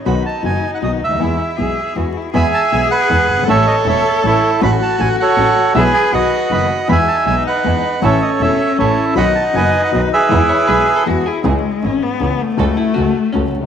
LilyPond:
<<
  \new Staff \with { instrumentName = "Bandoneon" } { \time 3/4 \key e \major \tempo 4 = 158 << { b''8 a''8 gis''8. fis''16 dis''8 e''8~ | e''2 r4 | b''8 a''8 gis''8 fis''4. | e''8 dis''8 e''4 cis''8. r16 |
b''8 a''16. a''32 gis''8 fis''4. | e''8 gis''8 fis''4 b''8. r16 | b''8 a''8 gis''8 fis''4. | e''8 dis''8 e''4 cis''8. r16 |
b''8 a''8 gis''8. fis''16 dis''8 e''8~ | e''2 r4 | \key cis \minor r2. | r2. | } \\ { r2. | r2. | <e'' gis''>4. b'4. | <a' cis''>4 <a' cis''>4 <e' a'>4 |
fis''4. <a' cis''>4. | <gis' b'>4 <b' dis''>4 <dis'' fis''>4 | <e'' gis''>4. b'4. | <a' cis''>4 <a' cis''>4 <e' a'>4 |
<dis'' fis''>4 <b' dis''>4. <gis' b'>8~ | <gis' b'>2 r4 | r2. | r2. | } >> }
  \new Staff \with { instrumentName = "Hollow-body jazz guitar" } { \time 3/4 \key e \major r2. | r2. | r2. | r2. |
r2. | r2. | r2. | r2. |
r2. | r8 cis''8 b'8. a'16 fis'8 gis'8 | \key cis \minor r2. | r8 e'8 fis'4 cis'8. r16 | }
  \new Staff \with { instrumentName = "Cello" } { \time 3/4 \key e \major dis'2. | e'4 gis'4 fis'8 e'8 | gis'2. | a'2. |
fis'2. | gis'4 fis'4. r8 | dis'2. | cis'2. |
dis'2. | e'4 gis'4 fis'8 e'8 | \key cis \minor gis4 cis'8 b4 a8~ | a2~ a8 r8 | }
  \new Staff \with { instrumentName = "String section" } { \time 3/4 \key e \major <b dis' fis'>8 r8 <b dis' fis'>8 r8 <b dis' fis'>8 r8 | <b e' gis'>8 r8 <b e' gis'>8 r8 <b e' gis'>8 r8 | <b e' gis'>8 r8 <b e' gis'>8 r8 <b e' gis'>8 r8 | <cis' e' a'>8 r8 <cis' e' a'>8 r8 <cis' e' a'>8 r8 |
<cis' fis' a'>8 r8 <cis' fis' a'>8 r8 <cis' fis' a'>8 r8 | <b e' gis'>8 r8 <b dis' fis'>8 r8 <b dis' fis'>8 r8 | <b e' gis'>8 r8 <b e' gis'>8 r8 <b e' gis'>8 r8 | <cis' e' a'>8 r8 <cis' e' a'>8 r8 <cis' e' a'>8 r8 |
<b dis' fis'>8 r8 <b dis' fis'>8 r8 <b dis' fis'>8 r8 | <b e' gis'>8 r8 <b e' gis'>8 r8 <b e' gis'>8 r8 | \key cis \minor <cis' e' gis'>8 r8 <cis' e' gis'>8 r8 <cis' e' gis'>8 r8 | <cis' fis' a'>8 r8 <cis' fis' a'>8 r8 <cis' fis' a'>8 r8 | }
  \new Staff \with { instrumentName = "Grand piano" } { \clef bass \time 3/4 \key e \major <b,, b, dis fis b fis'>8 r8 <fis,, fis, dis fis b fis'>8 r8 <b,, b, dis fis b fis'>8 r32 cis,32 d,32 dis,32 | <e, e gis b gis'>8 r8 <b,, b, e gis b gis'>8 r8 <e, e gis b gis'>8 r8 | <e, e gis b gis'>8 r8 <b,, b, e gis b gis'>8 r8 <e, e gis b gis'>8 r32 fis,,32 g,,32 gis,,32 | <a,, a, e a cis' a'>8 r8 <e,, e, e a cis' a'>8 r8 <a,, a, e a cis' a'>8 r8 |
<a,, a, fis a cis' a'>8 r8 <a,, a, fis a cis' a'>8 r8 <a,, a, fis a cis' a'>8 r8 | <b,, b, e gis b gis'>8 r8 <b,, b, dis fis b fis'>8 r8 <fis,, fis, dis fis b fis'>8 r8 | <e, e gis b gis'>8 r8 <b,, b, e gis b gis'>8 r8 <e, e gis b gis'>8 r8 | <a,, a, e a cis' a'>8 r8 <e,, e, e a cis' a'>8 r8 <a,, a, e a cis' a'>8 r8 |
<b,, b, dis fis b fis'>8 r8 <fis,, fis, dis fis b fis'>8 r8 <b,, b, dis fis b fis'>8 r8 | <e, e gis b gis'>8 r8 <b,, b, e gis b gis'>8 r8 <e, e gis b gis'>8 r8 | \key cis \minor <cis, cis e gis cis' gis'>8 r8 <gis,, gis, e gis cis' gis'>8 r8 <cis, cis e gis cis' gis'>8 r8 | <cis, cis fis a fis'>8 r8 <cis, cis fis a fis'>8 r8 <cis, cis fis a fis'>8 r32 bis,,32 cis,32 r32 | }
  \new Staff \with { instrumentName = "Double bass" } { \clef bass \time 3/4 \key e \major b,,8 r8 fis,,8 r8 b,,8 d,8 | e,8 r8 b,,8 r8 e,8 r8 | e,8 r8 b,,8 r8 e,8 g,,8 | a,,8 r8 e,,8 r8 a,,8 r8 |
a,,8 r8 a,,8 r8 a,,8 r8 | b,,8 r8 b,,8 r8 fis,,8 r8 | e,8 r8 b,,8 r8 e,8 r8 | a,,8 r8 e,,8 r8 a,,8 r8 |
b,,8 r8 fis,,8 r8 b,,8 r8 | e,8 r8 b,,8 r8 e,8 r8 | \key cis \minor cis,8 r8 gis,,8 r8 cis,8 r8 | cis,8 r8 cis,8 r8 cis,8 cis,8 | }
>>